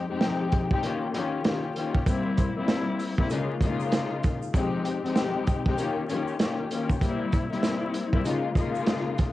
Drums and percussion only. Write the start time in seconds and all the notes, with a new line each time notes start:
0.21 snare, closed hi-hat
0.52 kick, closed hi-hat
0.71 kick
0.83 closed hi-hat
1.14 closed hi-hat
1.44 snare, closed hi-hat
1.76 closed hi-hat
1.95 kick
2.06 kick, closed hi-hat, shaker
2.37 kick, closed hi-hat, shaker
2.68 snare, closed hi-hat, shaker
2.99 open hi-hat, shaker
3.18 kick
3.30 closed hi-hat, shaker
3.61 kick, closed hi-hat, shaker
3.80 shaker
3.92 snare, closed hi-hat, shaker
4.23 kick, closed hi-hat, shaker
4.42 shaker
4.54 kick, closed hi-hat, shaker
4.85 closed hi-hat, shaker
5.06 closed hi-hat
5.16 snare, closed hi-hat, shaker
5.47 kick, closed hi-hat, shaker
5.66 kick
5.78 closed hi-hat, shaker
6.09 closed hi-hat, shaker
6.28 shaker
6.39 snare, closed hi-hat, shaker
6.71 closed hi-hat, shaker
6.90 kick, shaker
7.01 kick, closed hi-hat, shaker
7.32 kick, closed hi-hat, shaker
7.53 closed hi-hat
7.63 snare, closed hi-hat, shaker
7.94 closed hi-hat, shaker
8.13 kick
8.25 closed hi-hat, shaker
8.56 kick, closed hi-hat, shaker
8.75 shaker
8.87 snare, closed hi-hat, shaker
9.18 kick, closed hi-hat, shaker